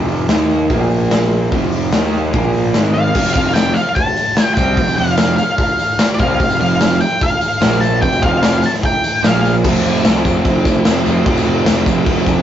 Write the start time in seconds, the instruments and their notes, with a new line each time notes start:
Already playing: picked electric bass F1, overdriven electric guitar F2 C3 F3
0.08 open hi-hat
0.29 picked electric bass D#2, overdriven electric guitar D#3 A#3 D#4, snare, open hi-hat
0.49 open hi-hat
0.70 picked electric bass A#1, overdriven electric guitar A#2 F3 A#3, kick, open hi-hat
0.91 open hi-hat
1.11 snare, open hi-hat
1.31 open hi-hat
1.51 picked electric bass F1, overdriven electric guitar F2 C3 F3, kick, open hi-hat
1.72 open hi-hat
1.92 picked electric bass D#2, overdriven electric guitar D#3 A#3 D#4, snare, open hi-hat
2.13 open hi-hat
2.33 picked electric bass A#1, overdriven electric guitar A#2 F3 A#3, kick, open hi-hat
2.54 open hi-hat
2.74 picked electric bass G#1, overdriven electric guitar G#2 D#3 G#3, snare, open hi-hat
2.94 lead electric guitar F5, open hi-hat
3.15 picked electric bass F1, overdriven electric guitar F2 C3, kick, crash
3.26 tambourine
3.34 picked electric bass F1, overdriven electric guitar F2 C3 F3, lead electric guitar F5, kick, open hi-hat
3.54 lead electric guitar G5, snare, open hi-hat, tambourine
3.74 lead electric guitar F5, open hi-hat, tambourine
3.85 tambourine
3.95 lead electric guitar A5, kick, open hi-hat, tambourine
4.07 tambourine
4.16 open hi-hat, tambourine
4.37 snare, open hi-hat, tambourine
4.54 picked electric bass C2, overdriven electric guitar C3 G3, lead electric guitar G5, kick, open hi-hat, tambourine
4.59 overdriven electric guitar C4
4.68 tambourine
4.77 picked electric bass F1, overdriven electric guitar F2 C3, kick, open hi-hat
4.88 tambourine
4.96 picked electric bass F1, overdriven electric guitar F2 C3 F3, lead electric guitar F5, open hi-hat, tambourine
5.08 tambourine
5.17 snare, open hi-hat, tambourine
5.36 lead electric guitar F5, open hi-hat, tambourine
5.49 tambourine
5.58 kick, open hi-hat, tambourine
5.69 tambourine
5.79 open hi-hat, tambourine
5.99 snare, open hi-hat, tambourine
6.10 tambourine
6.14 lead electric guitar D5
6.19 picked electric bass C2, overdriven electric guitar C3 G3 C4, lead electric guitar F5, kick, open hi-hat, tambourine
6.29 tambourine
6.40 picked electric bass F1, overdriven electric guitar F2 C3, kick, open hi-hat
6.50 tambourine
6.59 picked electric bass F1, overdriven electric guitar F2 C3 F3, lead electric guitar F5, open hi-hat, tambourine
6.71 tambourine
6.81 snare, open hi-hat, tambourine
7.00 lead electric guitar G5, open hi-hat, tambourine
7.12 tambourine
7.21 lead electric guitar F5, kick, open hi-hat
7.32 tambourine
7.41 open hi-hat, tambourine
7.52 tambourine
7.61 picked electric bass A#1, overdriven electric guitar A#2 F3 A#3, snare, open hi-hat, tambourine
7.72 tambourine
7.81 lead electric guitar A5, open hi-hat, tambourine
7.92 tambourine
8.02 picked electric bass F1, overdriven electric guitar F2 C3, lead electric guitar G5, kick, open hi-hat, tambourine
8.13 tambourine
8.22 picked electric bass F1, overdriven electric guitar F2 C3 F3, lead electric guitar F5, kick, open hi-hat
8.43 snare, open hi-hat, tambourine
8.63 lead electric guitar A5, open hi-hat, tambourine
8.73 snare, tambourine
8.83 lead electric guitar G5, kick, open hi-hat, tambourine
8.94 tambourine
9.04 open hi-hat, tambourine
9.23 picked electric bass A#1, overdriven electric guitar A#2 F3 A#3, lead electric guitar F5, snare, open hi-hat, tambourine
9.35 tambourine
9.45 open hi-hat, tambourine
9.56 tambourine
9.63 picked electric bass F1, overdriven electric guitar F2 C3 F3 A3, kick, crash
9.68 overdriven electric guitar C4
9.76 tambourine
9.84 picked electric bass F1, crash
9.96 tambourine
10.03 picked electric bass C2, overdriven electric guitar F2 C3 F3 A3, snare, tambourine, crash
10.07 overdriven electric guitar C4
10.16 tambourine
10.24 picked electric bass F1, overdriven electric guitar A3 C4, kick, tambourine, crash
10.28 overdriven electric guitar F3
10.45 picked electric bass F1, kick, crash
10.65 picked electric bass F1, kick, tambourine, crash
10.77 tambourine
10.85 picked electric bass F1, overdriven electric guitar C3 F3 A3, snare, tambourine, crash
10.89 overdriven electric guitar C4
10.97 tambourine
11.05 picked electric bass F1, overdriven electric guitar A3 C4, tambourine, crash
11.10 overdriven electric guitar F3
11.17 tambourine
11.25 picked electric bass F1, overdriven electric guitar F2 C3 F3 A3, kick, crash
11.29 overdriven electric guitar C4
11.37 tambourine
11.46 picked electric bass F1, tambourine, crash
11.58 tambourine
11.66 picked electric bass F1, overdriven electric guitar F2 C3 F3 A3, snare, tambourine, crash
11.70 overdriven electric guitar C4
11.78 tambourine
11.86 picked electric bass F1, overdriven electric guitar A3 C4, kick, tambourine, crash
11.90 overdriven electric guitar F3
12.06 picked electric bass F1, kick, crash
12.26 picked electric bass F1, kick, tambourine, crash